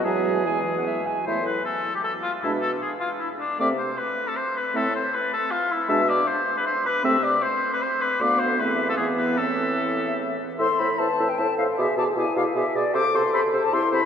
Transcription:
<<
  \new Staff \with { instrumentName = "Flute" } { \time 3/4 \key e \major \tempo 4 = 154 gis''4 gis''4. r8 | \key a \minor e''8 r2 r8 | e''8 r2 r8 | e''8 r2 r8 |
e''8 r2 r8 | e''8 r2 r8 | e''8 r2 r8 | f''4 e''4 e''4 |
e''2~ e''8 r8 | c'''8 b''8 a''8. g''16 a''8 f''8 | e''8 a''8 gis''8 f''8 e''8 d''8 | d'''8 c'''8 b''8. a''16 c'''8 b''8 | }
  \new Staff \with { instrumentName = "Oboe" } { \time 3/4 \key e \major gis'2~ gis'8 r8 | \key a \minor c''8 b'8 a'8. g'16 a'8 f'8 | e'8 a'8 gis'8 f'8 e'8 d'8 | d''8 c''8 b'8. a'16 c''8 b'8 |
a'8 c''8 b'8 a'8 f'8 e'8 | e''8 d''8 c''8. b'16 c''8 b'8 | e''8 d''8 c''8. b'16 c''8 b'8 | d''8 c''8 b'8. a'16 gis'8 b'8 |
a'2 r4 | e''8 e''8 e''8 e''8 e''8 e''8 | d''8 d''8 d''8 d''8 d''8 d''8 | c''8 c''8 c''8 c''8 c''8 c''8 | }
  \new Staff \with { instrumentName = "Clarinet" } { \time 3/4 \key e \major e''4 gis''8. fis''16 e''8 gis''8 | \key a \minor e'8 r2 r8 | d'8 r2 r8 | c'8 r2 r8 |
c'8 r2 r8 | d'8 r2 r8 | c'8 r2 r8 | b4 c'4 b4 |
c'2~ c'8 r8 | c''8 c''8 c''8 c''8 c''8 c''8 | gis'8 gis'8 gis'8 gis'8 gis'8 gis'8 | a'8 a'8 a'8 a'8 a'8 a'8 | }
  \new Staff \with { instrumentName = "French horn" } { \time 3/4 \key e \major fis4 e4. r8 | \key a \minor a8 r2 r8 | gis8 r2 r8 | a8 r2 r8 |
a8 r2 r8 | gis8 r2 r8 | a8 r2 r8 | a4 a4 e4 |
e2~ e8 r8 | a'4 b'4 a'4 | gis'4 e'4 gis'4 | a'2 e'4 | }
  \new Staff \with { instrumentName = "Bassoon" } { \clef bass \time 3/4 \key e \major e,2~ e,8 r8 | \key a \minor a,4 r2 | b,4 r2 | c4 r2 |
a,4 r2 | b,4 r2 | c4 r2 | d,4 e,4 e,4 |
a,2~ a,8 r8 | a,8 a,8 a,8 a,8 a,8 a,8 | b,8 b,8 b,8 b,8 b,8 b,8 | c8 c8 c8 c8 c8 c8 | }
>>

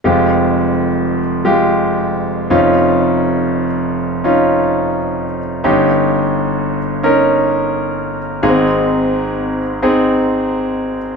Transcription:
<<
  \new Staff \with { instrumentName = "Grand piano" } { \time 4/4 \key f \minor \tempo 4 = 86 <aes f' g'>4. r8 <aes f' g'>4. <des' ees' f'>8~ | <des' ees' f'>4 r4 <des' ees' f'>4. r8 | <des' ees' g'>4. r8 <des' ees' bes'>4. r8 | <bes c' ees' aes'>4. r8 <c' ees' aes'>4. r8 | }
  \new Staff \with { instrumentName = "Grand piano" } { \clef bass \time 4/4 \key f \minor <f,, f,>2.~ <f,, f,>8 <f,, f,>8~ | <f,, f,>2.~ <f,, f,>8 r8 | <g,, g,>1 | <aes,, aes,>1 | }
>>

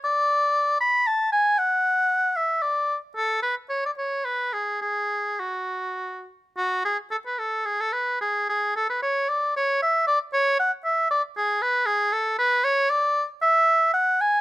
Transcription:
\new Staff \with { instrumentName = "Oboe" } { \time 3/4 \key fis \minor \tempo 4 = 114 d''4. b''8 a''8 gis''8 | fis''4. e''8 d''8. r16 | a'8 b'8 cis''16 d''16 cis''8 b'8 gis'8 | gis'4 fis'4. r8 |
fis'8 gis'8 a'16 b'16 a'8 gis'16 a'16 b'8 | gis'8 gis'8 a'16 b'16 cis''8 d''8 cis''8 | e''8 d''8 cis''8 fis''8 e''8 d''8 | gis'8 b'8 gis'8 a'8 b'8 cis''8 |
\key e \mixolydian d''8. r16 e''4 fis''8 gis''8 | }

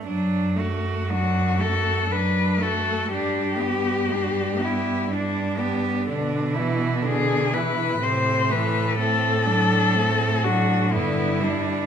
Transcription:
<<
  \new Staff \with { instrumentName = "Cello" } { \time 3/4 \key d \mixolydian \tempo 4 = 61 r4 fis'8 a'8 b'8 a'8 | g'4. e'8 d'4 | r4 aes'8 b'8 c''8 b'8 | a'4. fis'8 e'4 | }
  \new Staff \with { instrumentName = "Cello" } { \time 3/4 \key d \mixolydian d'8 fis'8 d'8 fis'8 d'8 fis'8 | d'8 g'8 d'8 g'8 d'8 g'8 | d'8 e'8 d'8 e'8 c'8 a8 | c'8 d'8 c'8 d'8 b8 d'8 | }
  \new Staff \with { instrumentName = "Cello" } { \clef bass \time 3/4 \key d \mixolydian fis8 a8 fis8 a8 fis8 a8 | g8 b8 g8 b8 g8 b8 | d8 e8 d8 e8 c8 e8 | a8 fis8 a8 fis8 d8 g8 | }
  \new Staff \with { instrumentName = "Cello" } { \clef bass \time 3/4 \key d \mixolydian fis,2. | g,2. | b,2 a,4~ | a,2 g,4 | }
>>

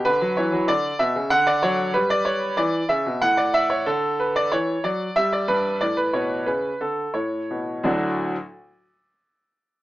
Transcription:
<<
  \new Staff \with { instrumentName = "Grand piano" } { \time 3/4 \key d \major \tempo 4 = 93 b'8 cis''8 d''8 e''8 fis''16 d''16 cis''8 | b'16 d''16 cis''8 d''8 e''8 fis''16 d''16 e''16 cis''16 | a'8 b'16 d''16 cis''8 d''8 e''16 d''16 b'8 | d''16 b'16 cis''8 b'8 a'8 cis''4 |
<d, a, fis a d' fis' d''>8 r2 r8 | }
  \new Staff \with { instrumentName = "Grand piano" } { \clef bass \time 3/4 \key d \major d16 fis16 e16 fis16 d8 b,16 cis16 d8 fis8 | g4 e8 cis16 b,16 a,4 | d4 e8 fis8 g8 g,8 | a,8 b,8 cis8 d8 a,8 b,8 |
r2. | }
>>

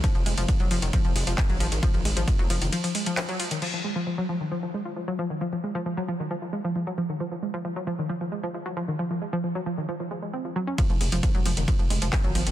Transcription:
<<
  \new Staff \with { instrumentName = "Synth arpeggio sound" } { \clef bass \time 4/4 \key f \phrygian \tempo 4 = 134 f16 f16 aes16 f16 f16 ges16 f16 ees16 f16 f16 aes16 f16 r16 ges16 f16 ees16 | f16 f16 aes16 f16 f16 ges16 f16 ees16 f16 f16 aes16 f16 f16 ges16 f16 ees16 | f16 f16 aes16 f16 f16 ges16 f16 ees16 f16 f16 aes16 f16 f16 ges16 f16 ees16 | f16 f16 aes16 f16 f16 ges16 f16 ees16 f16 f16 aes16 f16 f16 ges16 f16 ees16 |
f16 f16 aes16 f16 f16 ges16 f16 ees16 f16 f16 aes16 f16 f16 ges16 f16 ees16 | f16 f16 aes16 f16 f16 ges16 f16 ees16 f16 f16 aes16 aes16 c'16 f16 ges16 des'16 | f16 f16 aes16 f16 f16 ges16 f16 ees16 f16 f16 aes16 f16 f16 ges16 f16 ees16 | }
  \new Staff \with { instrumentName = "Analog synth bass" } { \clef bass \time 4/4 \key f \phrygian r16 f,,16 f,,16 f,,16 r16 f,,16 f,,16 f,,16 r16 f,,16 f,,16 f,,16 r16 aes,,16 aes,,16 aes,,16 | r16 aes,,16 aes,,16 aes,,16 r16 f,,16 f,,16 f,,16 r2 | r1 | r1 |
r1 | r1 | r16 f,,16 f,,16 f,,16 r16 f,,16 f,,16 f,,16 r16 f,,16 f,,16 f,,16 r16 aes,,16 aes,,16 aes,,16 | }
  \new DrumStaff \with { instrumentName = "Drums" } \drummode { \time 4/4 <hh bd cymr>16 cymr16 <hho cymr>16 <hh cymr>16 <hh bd cymr>16 cymr16 <hho cymr>16 <hh cymr>16 <hh bd cymr>16 cymr16 <hho cymr>16 <hh cymr>16 <hc hho bd cymr>16 cymr16 <hho cymr>16 <hh cymr>16 | <hh bd cymr>16 cymr16 <hho cymr>16 <hh cymr>16 <hh bd cymr>16 cymr16 <hho cymr>16 <hh cymr>16 <hh cymr>16 <hho cymr>16 <hho cymr>16 <hh cymr>16 <hc hh cymr>16 cymr16 <hho cymr>16 <hh cymr>16 | cymc4 r4 r4 r4 | r4 r4 r4 r4 |
r4 r4 r4 r4 | r4 r4 r4 r4 | <hh bd cymr>16 cymr16 <hho cymr>16 <hh cymr>16 <hh bd cymr>16 cymr16 <hho cymr>16 <hh cymr>16 <hh bd cymr>16 cymr16 <hho cymr>16 <hh cymr>16 <hc hho bd cymr>16 cymr16 <hho cymr>16 <hh cymr>16 | }
>>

